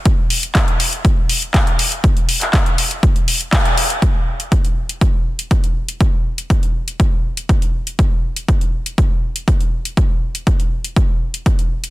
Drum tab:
HH |x-oxxxoxx-oxxxox|xxoxxxoxxxoxxxox|x--xxx-xx--xxx-x|x--xxx-xx--xxx-x|
CP |----x-------x---|---xx-------x---|----------------|----------------|
BD |o---o---o---o---|o---o---o---o---|o---o---o---o---|o---o---o---o---|

HH |x--xxx-xx--xxx-x|x--xxx-xx--xxx-x|
CP |----------------|----------------|
BD |o---o---o---o---|o---o---o---o---|